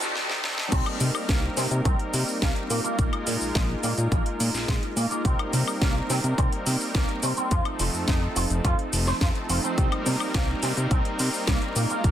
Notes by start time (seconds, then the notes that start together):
Already playing: G3 A3 C4 D#4 A4, riser
0.01 snare, closed hi-hat, cabasa
0.15 G3 A3 C4 D#4 A4, snare
0.30 snare
0.43 G3 A3 C4 D#4 A4, snare
0.58 snare
0.71 C2 G3 A#3 C4 D#4 A#4, kick, closed hi-hat, crash, cabasa
0.86 closed hi-hat, high woodblock
1.00 C3, open hi-hat, cabasa
1.15 cabasa, high woodblock
1.29 C2 A#3, kick, snare, closed hi-hat, cabasa
1.57 C3 C4, snare, open hi-hat, cabasa
1.71 C3, closed hi-hat, cabasa
1.85 C2 C4, kick, closed hi-hat, cabasa
1.99 closed hi-hat
2.14 C3, open hi-hat, cabasa
2.28 cabasa
2.42 C2 A#3, kick, snare, closed hi-hat, cabasa
2.56 closed hi-hat
2.70 A#2 G#3 A#3 D#4 F4 A#4, open hi-hat, cabasa
2.84 A#3, closed hi-hat, cabasa
2.98 A#1 G#3 A#3 D#4 F4 A#4, kick, closed hi-hat, cabasa
3.13 closed hi-hat, high woodblock
3.27 A#2, open hi-hat, cabasa
3.41 A#1, cabasa
3.55 A#1 G#3, kick, snare, closed hi-hat, cabasa
3.83 A#2 A#3, open hi-hat, cabasa
3.98 A#2, closed hi-hat, cabasa
4.12 A#1 A#3, kick, closed hi-hat, cabasa
4.26 closed hi-hat
4.40 A#2, open hi-hat, cabasa
4.54 A#1, snare, cabasa
4.68 A#1 G#3, kick, snare, closed hi-hat, cabasa
4.83 closed hi-hat
4.97 A#2 G#3 A#3 D#4 F4 A#4, open hi-hat, cabasa
5.11 A#3, cabasa
5.24 C2 G3 A#3 C4 D#4 A#4, kick, closed hi-hat, cabasa
5.39 closed hi-hat, high woodblock
5.53 C3, open hi-hat, cabasa
5.68 cabasa, high woodblock
5.82 C2 A#3, kick, snare, closed hi-hat, cabasa
6.10 C3 C4, snare, open hi-hat, cabasa
6.24 C3, closed hi-hat, cabasa
6.38 C2 C4, kick, closed hi-hat, cabasa
6.52 closed hi-hat
6.66 C3, open hi-hat, cabasa
6.81 cabasa
6.95 C2 A#3, kick, snare, closed hi-hat, cabasa
7.09 closed hi-hat
7.23 C3 G3 A#3 C4 D#4 A#4, open hi-hat, cabasa
7.37 C4, closed hi-hat, cabasa
7.51 F2 F3 A3 C4 D#4 F4 A4, kick, closed hi-hat, cabasa
7.65 closed hi-hat, high woodblock
7.79 F1 F3, open hi-hat, cabasa
7.94 F2, cabasa
8.08 F2 D#4, kick, snare, closed hi-hat, cabasa
8.36 F1 F4, open hi-hat, cabasa
8.50 F1, closed hi-hat, cabasa
8.65 F2 F4, kick, closed hi-hat, cabasa
8.79 closed hi-hat
8.93 F1, open hi-hat, cabasa
9.07 C5, snare, cabasa
9.21 F2 F4, kick, snare, closed hi-hat, cabasa
9.35 closed hi-hat
9.49 F1 F3 A3 C4 D#4 F4 C5, open hi-hat, cabasa
9.64 C4, closed hi-hat, cabasa
9.77 C2 G3 A#3 C4 D#4 A#4, kick, closed hi-hat, cabasa
9.92 closed hi-hat, high woodblock
10.06 C3, open hi-hat, cabasa
10.20 cabasa, high woodblock
10.34 C2 A#3, kick, snare, closed hi-hat, cabasa
10.63 C3 C4, snare, open hi-hat, cabasa
10.77 C3, closed hi-hat, cabasa
10.91 C2 C4, kick, closed hi-hat, cabasa
11.05 closed hi-hat
11.19 C3, open hi-hat, cabasa
11.34 cabasa
11.47 C2 A#3, kick, snare, closed hi-hat, cabasa
11.62 closed hi-hat
11.76 A#2 G#3 A#3 D#4 F4 A#4, open hi-hat, cabasa
11.90 A#3, closed hi-hat, cabasa
12.03 A#1 G#3 A#3 D#4 F4 A#4, kick, closed hi-hat, cabasa